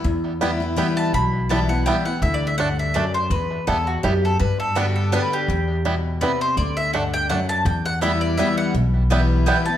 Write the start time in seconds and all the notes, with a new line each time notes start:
0.04 E2
0.41 E3 G3 B3 E4
0.60 B3 E4
0.76 E3 G3 B3 E4 G5
0.97 A5
1.13 B1 B2 B5
1.49 E3 G3 B3 E4 A5
1.69 B3 E4 F#5
1.86 E3 G3 B3 E4 G5
2.05 B3 E4 F#5
2.22 D2 D3 E5
2.34 D5
2.47 E5
2.58 G2 A3 D4 F#5
2.79 E5
2.94 F#2 A3 D4 D5
3.14 C5
3.30 E2 B4
3.67 E2 G3 B3 E4 A4
3.87 F#4
4.03 F#2 G3 B3 E4 G4
4.25 A4
4.39 G2 B4
4.60 A4
4.75 D3 G3 B3 D4 F#4 G4
4.96 A4
5.12 D3 G3 B3 D4 G4 B4
5.33 G4
5.48 E2
5.85 B2 G3 B3 E4
6.21 C3 G3 B3 E4 B4
6.41 C5
6.57 D2 D3 D5
6.77 E5
6.93 G2 A3 D4 F#5
7.14 G5
7.29 F#2 A3 D4 F#5
7.49 A5
7.65 E2 G5
7.86 F#5
8.01 E3 G3 B3 E4 E5
8.21 D5
8.37 E3 G3 B3 E4 E5
8.58 F#5
8.75 B1 B2
9.10 E3 G3 B3 E4 B4 G5
9.46 E3 G3 B3 E4 B4 G5
9.66 B3 E4 A5